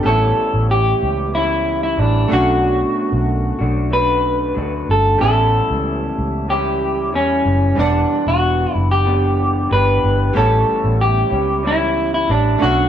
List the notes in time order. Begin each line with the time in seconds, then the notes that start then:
0.03 A1 A2 E3 G3 B3 A4 C#5
0.07 G3 C#4 E4
0.54 A1
0.71 G4
1.03 C#2
1.34 E3 G3 C#4 E4
1.38 E4
1.83 E4
1.97 A1 E3 G3 D4
2.01 E4
2.28 B1 A3 C#4 D4 F#4
2.32 B2 F#3 A3 F#4
3.12 B1
3.59 B1 D4 F#4
3.63 A3
3.91 F#3 A3 D4 B4
3.95 F#4
4.55 D2 F#3 A3 D4
4.59 F#4
4.89 G1 A4
5.18 A1 A2 E3 G3 B3 C#4 A4
5.23 G3 C#4 E4
5.70 C#2
6.18 C#2
6.48 E3 G3 C#4 E4 G4
7.12 E2 E3 G3 C#4 E4
7.46 F#1
7.75 E1 E3 G3 B3 D4
7.79 D4 F#5
8.27 E1 F#4
8.73 F#1 E4
8.91 G4
9.05 E3 B3 D4
9.10 G4
9.70 G1 E3 B3 D4 B4
9.74 G4
10.04 G1
10.33 A1 A2 E3 G3 B3 C#4 E4 A4 C#5
10.38 E4
10.84 A1
11.01 G4
11.30 C#2 C#4 E4
11.34 G3
11.63 E3 G3 C#4
11.67 E4
12.14 E4
12.28 A1 E3 G3 D4
12.32 E4
12.58 A3 C#4 D4 F#4
12.62 B1 B2 F#3 A3 F#4